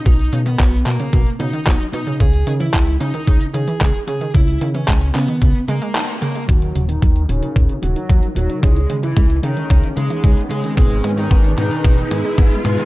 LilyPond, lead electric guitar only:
\new Staff \with { instrumentName = "Lead electric guitar" } { \time 4/4 \key cis \dorian \tempo 4 = 112 dis'8 r16 b8 r16 ais8. r16 dis'8. r16 dis'8 | gis'8 r16 e'8 r16 dis'8. r16 gis'8. r16 gis'8 | e'8 r16 cis'8 r16 b8. r16 ais8. r16 ais8 | <fis fis'>8 r16 <dis dis'>8 r16 <cis cis'>8. r16 <fis fis'>8. r16 <fis fis'>8 |
<gis gis'>8 r16 <e e'>8 r16 <dis dis'>8. r16 <gis gis'>8. r16 <gis gis'>8 | <gis gis'>8 r16 <dis dis'>8 r16 <dis dis'>8. r16 <gis gis'>8. r16 <gis gis'>8 | }